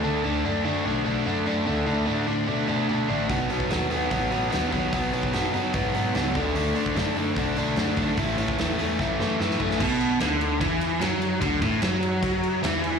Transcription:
0.03 picked electric bass D2, overdriven electric guitar D3 A3 D4
0.24 picked electric bass D2, overdriven electric guitar D3 A3 D4
0.45 picked electric bass F#2, overdriven electric guitar D3 A3 D4
0.65 overdriven electric guitar D3 A3 D4
0.85 picked electric bass B1, overdriven electric guitar D3 A3 D4
1.05 picked electric bass B1, overdriven electric guitar D3 A3 D4
1.26 picked electric bass F#2, overdriven electric guitar D3 A3 D4
1.46 picked electric bass F#2, overdriven electric guitar D3 A3 D4
1.66 picked electric bass D2, overdriven electric guitar D3 A3 D4
1.86 picked electric bass D2, overdriven electric guitar D3 A3 D4
2.06 picked electric bass A2, overdriven electric guitar D3 A3 D4
2.27 picked electric bass A2, overdriven electric guitar D3 A3 D4
2.47 picked electric bass B2, overdriven electric guitar D3 A3 D4
2.67 picked electric bass B2, overdriven electric guitar D3 A3 D4
2.88 picked electric bass B2, overdriven electric guitar D3 A3 D4
3.08 picked electric bass A1, overdriven electric guitar D3 A3 D4
3.29 picked electric bass B1, overdriven electric guitar B2 F#3 B3, kick, open hi-hat
3.49 picked electric bass B1, overdriven electric guitar B2 F#3 B3, open hi-hat
3.60 kick
3.70 picked electric bass D#2, overdriven electric guitar B2 F#3 B3, snare, open hi-hat
3.90 overdriven electric guitar B2 F#3 B3, open hi-hat
4.11 picked electric bass A1, overdriven electric guitar B2 F#3 B3, kick, open hi-hat
4.31 picked electric bass A1, overdriven electric guitar B2 F#3 B3, open hi-hat
4.51 picked electric bass D#2, overdriven electric guitar B2 F#3 B3, snare, open hi-hat
4.71 picked electric bass D#2, overdriven electric guitar B2 F#3 B3, kick, open hi-hat
4.92 picked electric bass B1, overdriven electric guitar B2 F#3 B3, kick, open hi-hat
5.13 picked electric bass B1, overdriven electric guitar B2 F#3 B3, open hi-hat
5.23 kick
5.33 picked electric bass F#2, overdriven electric guitar B2 F#3 B3, snare, open hi-hat
5.54 picked electric bass F#2, overdriven electric guitar B2 F#3 B3, open hi-hat
5.73 picked electric bass G#2, overdriven electric guitar B2 F#3 B3, kick, open hi-hat
5.94 picked electric bass G#2, overdriven electric guitar B2 F#3 B3, open hi-hat
6.15 picked electric bass C#2, overdriven electric guitar B2 F#3 B3, snare, open hi-hat
6.35 picked electric bass D2, overdriven electric guitar D3 A3 D4, kick, open hi-hat
6.55 picked electric bass D2, overdriven electric guitar D3 A3 D4, open hi-hat
6.75 picked electric bass D2, overdriven electric guitar D3 A3 D4, open hi-hat
6.86 kick
6.96 picked electric bass F#2, overdriven electric guitar D3 A3 D4, snare, open hi-hat
7.16 overdriven electric guitar D3 A3 D4, open hi-hat
7.36 picked electric bass B1, overdriven electric guitar D3 A3 D4, kick, open hi-hat
7.56 picked electric bass B1, overdriven electric guitar D3 A3 D4, open hi-hat
7.76 picked electric bass F#2, overdriven electric guitar D3 A3 D4, snare, open hi-hat
7.97 picked electric bass F#2, overdriven electric guitar D3 A3 D4, kick, open hi-hat
8.17 picked electric bass A1, overdriven electric guitar A2 E3 A3, kick, open hi-hat
8.38 picked electric bass A1, overdriven electric guitar A2 E3 A3, open hi-hat
8.48 kick
8.58 picked electric bass E2, overdriven electric guitar A2 E3 A3, snare, open hi-hat
8.79 picked electric bass E2, overdriven electric guitar A2 E3 A3, open hi-hat
8.99 picked electric bass F#2, overdriven electric guitar A2 E3 A3, kick, snare
9.20 picked electric bass F#2, overdriven electric guitar A2 E3 A3, snare
9.40 picked electric bass F#2, overdriven electric guitar A2 E3 A3, snare
9.51 snare
9.60 picked electric bass F#2, overdriven electric guitar A2 E3 A3, kick
9.71 snare
9.80 picked electric bass B1, overdriven electric guitar B2, kick, crash
10.01 ride
10.20 picked electric bass D2, overdriven electric guitar D3, snare, ride
10.41 ride
10.61 picked electric bass E2, overdriven electric guitar E3, kick, ride
10.81 ride
11.01 picked electric bass F#2, overdriven electric guitar F#3, snare, ride
11.22 ride
11.41 picked electric bass D2, overdriven electric guitar D3, kick, ride
11.62 picked electric bass A1, overdriven electric guitar A2, kick, ride
11.82 picked electric bass F#2, overdriven electric guitar F#3, snare, ride
12.03 ride
12.23 kick, ride
12.43 ride
12.63 picked electric bass E2, overdriven electric guitar E3, snare, ride
12.84 ride

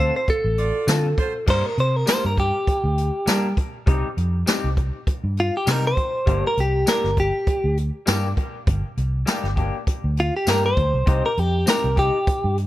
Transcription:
Already playing: fingered electric bass D2, clean electric guitar A4
0.00 clean electric guitar C4 F4 C5
0.16 clean electric guitar C5
0.28 clean electric guitar A4, kick, closed hi-hat
0.44 fingered electric bass A1
0.58 horn section F4 F#4 D5, closed hi-hat
0.87 fingered electric bass D3, clean electric guitar F#3 C4 F4 A4, snare, closed hi-hat, tambourine
1.18 horn section F4 F#4 C5, kick, closed hi-hat
1.47 fingered electric bass G2, clean electric guitar G3 A#3 D4 A#4 C5, kick, crash
1.66 clean electric guitar A#4
1.78 fingered electric bass C3, clean electric guitar C5, closed hi-hat
1.96 clean electric guitar A#4
2.06 clean electric guitar G3 A#3 D4 A#4 C5, snare, closed hi-hat, tambourine
2.25 fingered electric bass G2, clean electric guitar A#4
2.38 clean electric guitar G4, kick, closed hi-hat
2.67 kick, closed hi-hat
2.84 fingered electric bass D2
2.97 closed hi-hat
3.26 clean electric guitar G3 A#3 D4 A#4, fingered electric bass G3, snare, closed hi-hat, tambourine
3.57 kick, closed hi-hat
3.86 fingered electric bass C2, clean electric guitar G3 C4 D#4 G4, kick, closed hi-hat
4.17 fingered electric bass F2, closed hi-hat
4.46 clean electric guitar G3 C4 D#4 G4, snare, closed hi-hat, tambourine
4.64 fingered electric bass C2
4.77 kick, closed hi-hat
5.07 kick, closed hi-hat
5.24 fingered electric bass G2
5.37 clean electric guitar F4, closed hi-hat
5.57 clean electric guitar G4
5.66 fingered electric bass C3, clean electric guitar G3 C4 D#4 G4, snare, closed hi-hat, tambourine
5.71 clean electric guitar A#4
5.87 clean electric guitar C5
5.97 kick, closed hi-hat
6.26 fingered electric bass G1, clean electric guitar G3 A#3 D4 G4, kick, closed hi-hat
6.47 clean electric guitar A#4
6.57 fingered electric bass C2, clean electric guitar G4, closed hi-hat
6.86 clean electric guitar G3 A#3 D4 G4 A#4, snare, closed hi-hat, tambourine
7.04 fingered electric bass G1, snare
7.17 clean electric guitar G4, kick, closed hi-hat
7.47 kick, closed hi-hat
7.64 fingered electric bass D2
7.77 closed hi-hat
8.06 fingered electric bass G2, clean electric guitar G3 A#3 D4 G4, snare, closed hi-hat, tambourine
8.37 kick, closed hi-hat
8.67 fingered electric bass G1, kick, closed hi-hat
8.97 fingered electric bass C2, closed hi-hat
9.26 clean electric guitar G3 A#3 D4 G4, snare, closed hi-hat, tambourine
9.44 fingered electric bass G1, snare
9.56 clean electric guitar A#3 D4 G4, kick, closed hi-hat
9.87 kick, closed hi-hat
10.04 fingered electric bass D2
10.17 clean electric guitar F4, closed hi-hat
10.37 clean electric guitar G4
10.47 fingered electric bass G2, clean electric guitar G3 A#3 D4 G4 A#4, snare, closed hi-hat, tambourine
10.66 clean electric guitar C5
10.77 fingered electric bass D2, kick, closed hi-hat
10.94 fingered electric bass C2
11.06 fingered electric bass C2, clean electric guitar C4 D#4 G4, kick, closed hi-hat
11.26 clean electric guitar A#4
11.37 fingered electric bass F2, clean electric guitar G4, closed hi-hat
11.66 clean electric guitar C4 D#4 G4 A#4, snare, closed hi-hat, tambourine
11.84 fingered electric bass C2
11.96 clean electric guitar D#4 G4, kick, closed hi-hat
12.27 kick, closed hi-hat
12.44 fingered electric bass G2
12.57 closed hi-hat

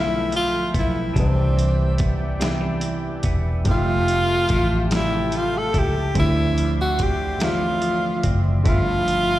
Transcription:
Already playing: fingered electric bass B1, clean electric guitar G2 F3 B3 E4, grand piano D3 F3 A3 B3 E5, tenor saxophone E4, analog synth pad A4 E5 G5 B5
0.31 clean electric guitar F3, closed hi-hat
0.36 tenor saxophone F4
0.74 fingered electric bass B1, clean electric guitar B3, kick, closed hi-hat
0.78 tenor saxophone E4
1.13 fingered electric bass C2, clean electric guitar C3 D4, grand piano C3 E3, analog synth pad D5 G5, kick, closed hi-hat
1.18 grand piano G3 D4 B4, tenor saxophone C4, analog synth pad G4
1.56 clean electric guitar E3, closed hi-hat
1.98 clean electric guitar B3, kick, closed hi-hat
2.40 grand piano C3 E3 G3 B3, clean electric guitar C4, snare, closed hi-hat
2.44 grand piano E4
2.61 clean electric guitar D4
2.81 clean electric guitar E3, closed hi-hat
3.23 fingered electric bass E1, clean electric guitar B3, kick, closed hi-hat
3.64 fingered electric bass F1, grand piano C3 F3 G3, clean electric guitar F3 G4, analog synth pad G4 E5 G5 A5, kick, closed hi-hat
3.69 grand piano A3 D#4, tenor saxophone F4
3.76 grand piano E5
4.08 clean electric guitar A3, closed hi-hat
4.49 fingered electric bass A1, clean electric guitar E4, kick, closed hi-hat
4.90 grand piano C3 F3 G3 A3, clean electric guitar F4, snare, closed hi-hat
4.95 grand piano E4, tenor saxophone E4
5.13 clean electric guitar G4
5.32 clean electric guitar A3, closed hi-hat
5.37 tenor saxophone F4
5.58 tenor saxophone A4
5.73 fingered electric bass C#2, clean electric guitar E4, kick, closed hi-hat
5.78 tenor saxophone G4
6.15 fingered electric bass D2, grand piano D3 F3 A3 C4, clean electric guitar D3 E4, analog synth pad F3 D5 C6, kick, closed hi-hat
6.19 tenor saxophone E4, grand piano E4
6.58 clean electric guitar F3, closed hi-hat
6.81 tenor saxophone F#4
6.99 clean electric guitar C4, tenor saxophone G4, kick, closed hi-hat
7.38 grand piano D3 E3 A3 C4, clean electric guitar E4, snare, closed hi-hat
7.44 grand piano F3 E5, tenor saxophone F4
7.80 clean electric guitar F3, closed hi-hat
8.23 fingered electric bass F#1, clean electric guitar C4, kick, closed hi-hat
8.64 fingered electric bass G1, clean electric guitar G2 E4, grand piano D3 F3 A3 B3, analog synth pad A5 B5, kick, closed hi-hat
8.68 tenor saxophone F4, grand piano E5
9.05 clean electric guitar F3, closed hi-hat

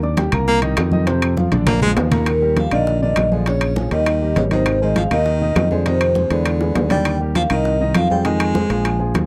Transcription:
Already playing: fingered electric bass D#2
0.02 upright piano D4 D5 D6, high bongo, high conga
0.17 upright piano G3 G4 G5, high bongo, high conga, high timbale
0.32 fingered electric bass C2, upright piano A#3 A#4 A#5, high bongo, high conga, low conga, high timbale, claves
0.48 baritone saxophone A#3, high bongo
0.62 upright piano D#3 D#4 D#5, baritone saxophone G3, high bongo, high conga, high timbale
0.77 fingered electric bass F2, high bongo, low bongo, high conga, high timbale, claves
0.92 upright piano D#3 D#4 D#5, high conga
1.07 upright piano C3 C4 C5, high bongo, high conga, high timbale
1.22 high bongo, high conga, high timbale, claves
1.37 upright piano F3 F4 F5, high bongo, high conga
1.52 fingered electric bass A#1, upright piano D3 D4 D5, high bongo, high conga, high timbale
1.67 baritone saxophone A#3, high bongo, low conga, high timbale, claves
1.82 upright piano F3 F4 F5, baritone saxophone G#3, high bongo, low conga
1.97 fingered electric bass D#2, high bongo, low bongo, high timbale, low timbale
2.12 baritone saxophone A#2, upright piano A#3 A#4 A#5, vibraphone A#4, low conga, high timbale
2.26 high bongo, high conga, high timbale, claves
2.42 upright piano G3 G4 A#4, high conga
2.57 baritone saxophone F3, vibraphone F5, high bongo, high conga, high timbale
2.71 fingered electric bass A#1, upright piano D3 D4 D5, baritone saxophone D#3, vibraphone D#5, high conga, high timbale, claves
2.87 high bongo, high conga
3.02 upright piano D3 D4 D5, baritone saxophone D#3, vibraphone D#5, high conga
3.16 fingered electric bass A#1, high bongo, low bongo, high conga, high timbale, claves
3.31 baritone saxophone D3, upright piano F3 F4 G#4, vibraphone D5, high conga
3.46 upright piano C#3 C#4 C#5, baritone saxophone C#3, vibraphone C#5, high bongo, high conga, high timbale
3.61 high bongo, high conga, high timbale, claves
3.76 upright piano F3 F4 G#4, high bongo, high conga
3.91 fingered electric bass D#2, baritone saxophone D#3, upright piano G3 G4 A#4, vibraphone D#5, high bongo, high conga, high timbale
4.06 high bongo, high conga, high timbale, claves
4.22 upright piano G3 G4 A#4, high conga
4.36 fingered electric bass G#1, baritone saxophone C#3, vibraphone C#5, high bongo, low bongo, high conga, high timbale, low timbale
4.51 baritone saxophone C3, upright piano D#3 D#4 D#5, vibraphone C5, high bongo, high conga, high timbale
4.66 high bongo, high conga, high timbale, claves
4.81 baritone saxophone D#3, upright piano G#3 G#4 C5, vibraphone D#5, high conga
4.96 baritone saxophone F3, vibraphone F5, high bongo, high conga, high timbale
5.11 fingered electric bass D#2, upright piano D#3 D#4 D#5, baritone saxophone D#3, vibraphone D#5, high conga, high timbale, claves
5.26 high bongo, high conga
5.41 upright piano D#3 D#4 D#5, high conga
5.56 fingered electric bass F2, high bongo, low bongo, high conga, high timbale, low timbale, claves
5.71 baritone saxophone D3, upright piano G#3 G#4 C5, vibraphone D5, high conga
5.86 baritone saxophone C3, upright piano D#3 D#4 D#5, vibraphone C5, high bongo, high conga, high timbale
6.01 high bongo, high conga, high timbale, claves
6.15 upright piano G#3 G#4 C5, high bongo, high conga
6.30 fingered electric bass E2, baritone saxophone D3, upright piano G#3 G#4 B4, vibraphone D5, high bongo, high conga, high timbale
6.46 high bongo, high conga, high timbale, claves
6.61 upright piano G#3 G#4 B4, high bongo, high conga
6.75 fingered electric bass D#2, high bongo, high conga, high timbale, low timbale
6.90 upright piano D3 D4 D5, baritone saxophone G3, vibraphone G5, low bongo, high conga, high timbale
7.05 high bongo, high conga, high timbale, claves
7.21 upright piano G3 G4 A#4, high conga
7.35 baritone saxophone F3, vibraphone F5, high bongo, high conga, high timbale
7.50 fingered electric bass C2, baritone saxophone D#3, upright piano D#3 D#4 D#5, vibraphone D#5, high conga, high timbale, claves
7.65 high bongo, high conga
7.80 upright piano D#3 D#4 D#5, high conga
7.95 fingered electric bass F2, baritone saxophone F3, vibraphone F5, high bongo, low bongo, high conga, high timbale, claves
8.10 baritone saxophone G3, upright piano G#3 G#4 C5, vibraphone G5, high conga
8.25 upright piano D#3 D#4 D#5, baritone saxophone G#3, vibraphone G#5, high bongo, high conga, high timbale
8.40 high bongo, high conga, high timbale, claves
8.55 upright piano G#3 G#4 C5, high bongo, high conga
8.69 fingered electric bass A#1, upright piano F3 F4 G#4, high bongo, high conga, high timbale
8.85 high bongo, high conga, high timbale, claves
8.99 upright piano F3 F4 G#4, high conga
9.14 fingered electric bass D#2, high bongo, low bongo, high conga, high timbale

